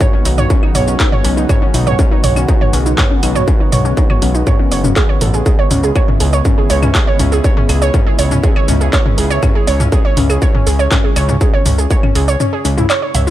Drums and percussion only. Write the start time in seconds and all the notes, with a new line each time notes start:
0.01 kick, mid tom, shaker
0.25 open hi-hat, shaker
0.38 mid tom, shaker
0.50 kick, shaker
0.63 claves
0.75 mid tom, open hi-hat, shaker
0.88 shaker
1.00 kick, clap, shaker
1.12 mid tom
1.25 open hi-hat, shaker
1.37 shaker
1.49 kick, mid tom, claves, shaker
1.74 open hi-hat, shaker
1.87 mid tom, shaker
1.99 kick, shaker
2.24 mid tom, open hi-hat, shaker
2.36 claves, shaker
2.48 kick, shaker
2.61 mid tom
2.73 open hi-hat, shaker
2.86 shaker
2.98 kick, clap, mid tom, shaker
3.23 open hi-hat, claves, shaker
3.36 mid tom, shaker
3.48 kick, shaker
3.72 mid tom, open hi-hat, shaker
3.85 shaker
3.97 kick, shaker
4.10 mid tom, claves
4.22 open hi-hat, shaker
4.35 shaker
4.47 kick, mid tom, shaker
4.72 open hi-hat, shaker
4.84 mid tom, shaker
4.96 kick, clap, claves, shaker
5.21 mid tom, open hi-hat, shaker
5.34 shaker
5.46 kick, shaker
5.71 mid tom, open hi-hat, shaker
5.83 shaker
5.96 kick, claves, shaker
6.08 mid tom
6.20 open hi-hat, shaker
6.33 shaker
6.45 kick, mid tom, shaker
6.70 open hi-hat, shaker
6.83 mid tom, claves, shaker
6.95 kick, clap, shaker
7.19 mid tom, open hi-hat, shaker
7.32 shaker
7.44 kick, shaker
7.57 mid tom
7.69 open hi-hat, claves, shaker
7.82 shaker
7.94 kick, mid tom, shaker
8.19 open hi-hat, shaker
8.31 mid tom, shaker
8.44 kick, shaker
8.56 claves
8.68 mid tom, open hi-hat, shaker
8.81 shaker
8.93 kick, clap, shaker
9.06 mid tom
9.18 open hi-hat, shaker
9.31 shaker
9.43 kick, mid tom, claves, shaker
9.67 open hi-hat, shaker
9.80 mid tom, shaker
9.92 kick, shaker
10.17 mid tom, open hi-hat, shaker
10.30 claves, shaker
10.42 kick, shaker
10.55 mid tom
10.67 open hi-hat, shaker
10.79 shaker
10.91 kick, clap, mid tom, shaker
11.16 open hi-hat, claves, shaker
11.29 mid tom, shaker
11.41 kick, shaker
11.66 mid tom, open hi-hat, shaker
11.78 shaker
11.91 kick, shaker
12.03 mid tom, claves
12.15 open hi-hat, shaker
12.28 shaker
12.40 mid tom, shaker
12.65 open hi-hat, shaker
12.78 mid tom, shaker
12.90 clap, claves, shaker
13.15 mid tom, open hi-hat, shaker